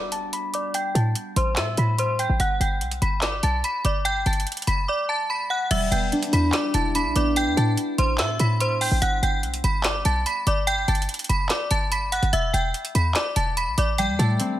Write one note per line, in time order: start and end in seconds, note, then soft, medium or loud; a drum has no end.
0.00 0.31 E1 medium
0.00 1.99 B3 medium
0.00 1.47 D4 medium
0.00 0.91 F#4 medium
0.00 0.62 G4 medium
0.12 0.28 A5 medium
0.12 0.29 A6 medium
0.12 closed hi-hat medium
0.33 0.49 B5 medium
0.33 0.50 B6 medium
0.33 closed hi-hat medium
0.54 0.70 D5 medium
0.54 0.70 D6 medium
0.54 closed hi-hat medium
0.74 0.91 G5 loud
0.74 0.91 G6 medium
0.74 closed hi-hat medium
0.95 1.15 A2 loud
0.95 1.11 A5 medium
0.95 1.12 A6 medium
0.95 closed hi-hat medium
1.15 closed hi-hat medium
1.36 1.59 A1 loud
1.36 1.53 C5 medium
1.36 1.53 C6 medium
1.36 closed hi-hat medium
1.56 1.77 A2 loud
1.56 1.74 E5 medium
1.56 1.73 E6 medium
1.56 snare loud
1.56 clap medium
1.56 closed hi-hat medium
1.77 2.27 A2 loud
1.77 1.94 B5 medium
1.77 1.95 B6 medium
1.77 closed hi-hat medium
1.98 2.15 C5 medium
1.98 2.15 C6 medium
1.98 closed hi-hat medium
2.19 2.35 G5 medium
2.19 2.36 G6 medium
2.19 closed hi-hat medium
2.29 2.39 A1 loud
2.40 2.60 G1 loud
2.40 2.56 F#5 medium
2.40 2.57 F#6 medium
2.40 closed hi-hat medium
2.60 2.83 G1 loud
2.60 2.77 G5 medium
2.60 2.77 G6 medium
2.60 closed hi-hat medium
2.81 3.01 B1 loud
2.81 closed hi-hat medium
2.91 closed hi-hat medium
3.02 3.42 G1 loud
3.02 3.18 B5 medium
3.02 3.19 B6 medium
3.02 closed hi-hat medium
3.22 3.39 D5 medium
3.22 3.39 D6 medium
3.22 snare loud
3.22 clap medium
3.22 closed hi-hat medium
3.43 3.63 B1 loud
3.43 3.59 A5 medium
3.43 3.60 A6 medium
3.43 closed hi-hat medium
3.64 3.80 B5 medium
3.64 3.81 B6 medium
3.64 closed hi-hat medium
3.85 4.24 G1 loud
3.85 4.01 D5 medium
3.85 4.01 D6 medium
3.85 closed hi-hat medium
4.05 4.21 G5 loud
4.05 4.22 G6 medium
4.05 closed hi-hat medium
4.26 4.46 G1 loud
4.26 4.42 A5 medium
4.26 4.43 A6 medium
4.26 closed hi-hat soft
4.33 closed hi-hat soft
4.40 closed hi-hat medium
4.47 closed hi-hat medium
4.52 closed hi-hat medium
4.57 closed hi-hat medium
4.62 closed hi-hat medium
4.67 4.87 F#1 loud
4.67 4.84 B5 medium
4.67 4.84 B6 medium
4.67 closed hi-hat medium
4.88 5.05 D5 medium
4.88 5.04 D6 medium
5.09 5.25 A5 medium
5.09 5.26 A6 medium
5.30 5.46 B5 medium
5.30 5.46 B6 medium
5.50 5.66 F#5 medium
5.50 5.67 F#6 medium
5.71 5.91 E1 loud
5.71 7.41 G3 loud
5.71 5.87 E5 loud
5.71 5.88 E6 medium
5.71 closed hi-hat medium
5.71 crash loud
5.92 6.11 E1 loud
5.92 7.15 B3 medium
5.92 6.08 G5 medium
5.92 6.08 G6 medium
5.92 closed hi-hat medium
6.12 6.94 D4 medium
6.12 closed hi-hat medium
6.23 closed hi-hat medium
6.33 6.53 E2 loud
6.33 6.75 E4 medium
6.33 6.49 B5 medium
6.33 6.50 B6 medium
6.33 closed hi-hat medium
6.53 8.89 G4 medium
6.53 6.70 D5 medium
6.53 6.70 D6 medium
6.53 snare loud
6.53 clap medium
6.53 closed hi-hat medium
6.74 7.07 E1 loud
6.74 9.36 E4 medium
6.74 6.90 A5 medium
6.74 6.91 A6 medium
6.74 closed hi-hat medium
6.95 9.75 D4 medium
6.95 7.11 B5 medium
6.95 7.12 B6 medium
6.95 closed hi-hat medium
7.05 7.15 B1 loud
7.15 7.48 A1 loud
7.15 10.26 B3 medium
7.15 7.33 D5 medium
7.15 7.32 D6 medium
7.15 closed hi-hat medium
7.36 7.53 G5 loud
7.36 7.53 G6 medium
7.36 closed hi-hat medium
7.47 7.57 E2 loud
7.57 7.77 A2 loud
7.57 7.73 A5 medium
7.57 7.74 A6 medium
7.57 closed hi-hat medium
7.77 closed hi-hat medium
7.98 8.21 A1 loud
7.98 8.15 C5 medium
7.98 8.15 C6 medium
7.98 closed hi-hat medium
8.18 8.39 A2 loud
8.18 8.36 E5 medium
8.18 8.35 E6 medium
8.18 snare loud
8.18 clap loud
8.18 closed hi-hat medium
8.39 8.89 A2 loud
8.39 8.56 B5 medium
8.39 8.57 B6 medium
8.39 closed hi-hat medium
8.60 8.77 C5 medium
8.60 8.77 C6 medium
8.60 closed hi-hat medium
8.81 8.97 G5 medium
8.81 8.98 G6 medium
8.81 open hi-hat medium
8.91 9.01 A1 loud
9.02 9.22 G1 loud
9.02 9.18 F#5 loud
9.02 9.19 F#6 medium
9.02 closed hi-hat medium
9.23 9.45 G1 loud
9.23 9.39 G5 medium
9.23 9.39 G6 medium
9.23 closed hi-hat medium
9.43 9.63 B1 loud
9.43 closed hi-hat medium
9.54 closed hi-hat medium
9.64 10.04 G1 loud
9.64 9.80 B5 medium
9.64 9.81 B6 medium
9.64 closed hi-hat medium
9.84 10.01 D5 medium
9.84 10.01 D6 medium
9.84 snare loud
9.84 clap loud
9.84 closed hi-hat medium
10.05 10.25 B1 loud
10.05 10.22 A5 medium
10.05 10.22 A6 medium
10.05 closed hi-hat medium
10.26 10.42 B5 medium
10.26 10.43 B6 medium
10.26 closed hi-hat medium
10.47 10.86 G1 loud
10.47 10.64 D5 medium
10.47 10.63 D6 medium
10.47 closed hi-hat medium
10.67 10.83 G5 loud
10.67 10.84 G6 medium
10.67 closed hi-hat medium
10.88 11.08 G1 loud
10.88 11.04 A5 medium
10.88 11.05 A6 medium
10.88 closed hi-hat medium
10.95 closed hi-hat medium
11.02 closed hi-hat medium
11.09 closed hi-hat medium
11.14 closed hi-hat medium
11.19 closed hi-hat medium
11.24 closed hi-hat medium
11.29 11.49 F#1 loud
11.29 11.46 B5 medium
11.29 11.46 B6 medium
11.29 closed hi-hat medium
11.49 11.67 D5 medium
11.49 11.67 D6 medium
11.49 snare loud
11.49 clap loud
11.49 closed hi-hat medium
11.71 12.21 G1 loud
11.71 11.87 A5 medium
11.71 11.88 A6 medium
11.71 closed hi-hat medium
11.92 12.08 B5 medium
11.92 12.08 B6 medium
11.92 closed hi-hat medium
12.12 12.28 F#5 medium
12.12 12.29 F#6 medium
12.12 closed hi-hat medium
12.12 open hi-hat medium
12.23 12.32 G1 loud
12.23 closed hi-hat soft
12.33 12.53 E1 loud
12.33 12.49 E5 loud
12.33 12.50 E6 medium
12.33 closed hi-hat medium
12.53 12.73 E1 loud
12.53 12.70 G5 medium
12.53 12.70 G6 medium
12.53 closed hi-hat medium
12.74 closed hi-hat medium
12.85 closed hi-hat medium
12.95 13.15 E2 loud
12.95 13.11 B5 medium
12.95 13.12 B6 medium
12.95 closed hi-hat medium
13.15 13.32 D5 medium
13.15 13.32 D6 medium
13.15 snare loud
13.15 clap medium
13.15 closed hi-hat medium
13.36 13.69 E1 loud
13.36 13.52 A5 medium
13.36 13.53 A6 medium
13.36 closed hi-hat medium
13.57 13.73 B5 medium
13.57 13.74 B6 medium
13.57 closed hi-hat medium
13.67 13.77 B1 loud
13.78 14.10 A1 loud
13.78 13.95 D5 medium
13.78 13.94 D6 medium
13.78 closed hi-hat medium
13.98 14.60 G3 medium
13.98 14.15 G5 loud
13.98 14.15 G6 medium
13.98 closed hi-hat medium
14.09 14.19 E2 loud
14.19 14.39 A2 loud
14.19 14.60 A3 medium
14.19 14.35 A5 medium
14.19 14.36 A6 medium
14.19 closed hi-hat medium
14.40 14.60 C4 medium
14.40 closed hi-hat medium